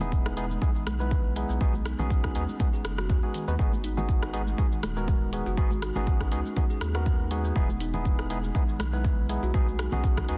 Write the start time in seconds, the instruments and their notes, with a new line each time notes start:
Already playing: analog synth bass E1
0.00 kalimba G#3, tine electric piano B3 D#4 E4 G#4, high conga, low conga, shaker
0.12 kick, shaker
0.26 kalimba D#4, cross-stick, shaker
0.37 kalimba G#3, tine electric piano B3 D#4 E4 G#4, open hi-hat, shaker
0.51 high conga, shaker
0.62 kalimba G#3, tine electric piano B3 D#4 E4 G#4, kick, shaker
0.75 kalimba D#3, shaker
0.86 analog synth bass B1, cross-stick, open hi-hat, high conga, shaker
1.00 kalimba G#3, tine electric piano B3 D#4 E4 B4, shaker
1.11 kalimba G#3, kick, shaker
1.36 kalimba G#3, tine electric piano B3 D#4 E4 G#4, open hi-hat, shaker
1.49 analog synth bass B1, kalimba B3, shaker
1.61 analog synth bass B1, kalimba G#3, tine electric piano B3 D#4 F#4 G#4, kick, shaker
1.73 high conga, shaker
1.85 kalimba D#4, cross-stick, open hi-hat, shaker
1.99 analog synth bass B1, tine electric piano B3 D#4 F#4 G#4, kalimba C#4, high conga, low conga, shaker
2.10 kick, shaker
2.24 kalimba D#4, kick, cross-stick, low conga, shaker
2.35 analog synth bass D#2, kalimba G#3, tine electric piano B3 D#4 F#4 G#4, open hi-hat, shaker
2.49 high conga, shaker
2.59 kalimba G#3, tine electric piano B3 D#4 F#4 G#4, kick, open hi-hat, high conga, low conga, shaker
2.73 kalimba G#4, shaker
2.85 analog synth bass F#1, cross-stick, open hi-hat, shaker
2.98 kalimba F#4, cross-stick, shaker
3.09 analog synth bass D#2, kalimba B3, tine electric piano B3 D#4 F#4 G#4, kick, shaker
3.23 kalimba G#3, tine electric piano B3 D#4 F#4 G#4
3.34 kalimba D#3, open hi-hat, shaker
3.48 analog synth bass D#2, tine electric piano B3 D#4 F#4 B4, kalimba G#4, shaker
3.59 analog synth bass G#1, kalimba G#3, tine electric piano B3 D#4 F#4 G#4, kick, shaker
3.72 high conga, shaker
3.84 kalimba D#4, open hi-hat, shaker
3.97 kalimba G#3, tine electric piano B3 D#4 F#4 G#4, high conga, low conga, shaker
4.09 kick, shaker
4.22 kalimba D#4, cross-stick, shaker
4.33 kalimba G#3, tine electric piano B3 D#4 F#4 G#4, open hi-hat, shaker
4.47 high conga, shaker
4.58 kalimba G#3, tine electric piano B3 D#4 F#4 G#4, kick, shaker
4.72 kalimba D#3, shaker
4.83 analog synth bass D#1, cross-stick, open hi-hat, high conga, shaker
4.97 kalimba G#3, tine electric piano B3 D#4 F#4 A#4, shaker
5.08 kalimba G#3, kick, shaker
5.33 kalimba G#3, tine electric piano B3 D#4 F#4 G#4, open hi-hat, shaker
5.46 analog synth bass F#1, kalimba F#4, shaker
5.57 analog synth bass G#1, kalimba G#3, tine electric piano B3 D#4 F#4 G#4, kick, shaker
5.71 high conga, shaker
5.82 kalimba D#4, cross-stick, open hi-hat, shaker
5.95 analog synth bass G#1, tine electric piano B3 D#4 F#4 G#4, kalimba C#4, high conga, low conga, shaker
6.07 kick, shaker
6.21 kalimba D#4, kick, cross-stick, shaker
6.32 analog synth bass C#2, kalimba G#3, tine electric piano B3 D#4 F#4 G#4, open hi-hat, shaker
6.45 high conga, shaker
6.56 kalimba G#3, tine electric piano B3 D#4 F#4 G#4, kick, open hi-hat, high conga, low conga, shaker
6.70 kalimba G#4, shaker
6.81 analog synth bass D#2, cross-stick, open hi-hat, shaker
6.95 tine electric piano B3 D#4 F#4 A#4, kalimba D#4, cross-stick, shaker
7.06 kalimba G#3, kick, shaker
7.31 kalimba G#3, tine electric piano B3 D#4 F#4 G#4, open hi-hat, shaker
7.44 kalimba B3, shaker
7.56 analog synth bass E1, tine electric piano B3 D#4 E4 G#4, kick, shaker
7.69 high conga, shaker
7.80 kalimba D#4, open hi-hat, shaker
7.94 kalimba G#3, tine electric piano B3 D#4 E4 G#4, high conga, low conga, shaker
8.05 kick, shaker
8.19 kalimba D#4, cross-stick, shaker
8.30 kalimba G#3, tine electric piano B3 D#4 E4 G#4, open hi-hat, shaker
8.44 high conga, shaker
8.55 kalimba G#3, tine electric piano B3 D#4 E4 G#4, kick, shaker
8.68 kalimba D#3, shaker
8.79 analog synth bass B1, cross-stick, open hi-hat, high conga, shaker
8.93 kalimba G#3, tine electric piano B3 D#4 E4 B4, shaker
9.05 kalimba G#3, kick, shaker
9.29 kalimba G#3, tine electric piano B3 D#4 E4 G#4, open hi-hat, shaker
9.43 analog synth bass B1, kalimba F#4, shaker
9.54 analog synth bass B1, kalimba G#3, tine electric piano B3 D#4 F#4 G#4, kick, shaker
9.68 high conga, shaker
9.79 kalimba D#4, cross-stick, open hi-hat, shaker
9.92 analog synth bass B1, tine electric piano B3 D#4 F#4 G#4, kalimba C#4, high conga, low conga, shaker
10.04 kick, shaker
10.17 kalimba D#4, kick, cross-stick, low conga, shaker
10.28 analog synth bass D#2, kalimba G#3, tine electric piano B3 D#4 F#4 G#4, open hi-hat, shaker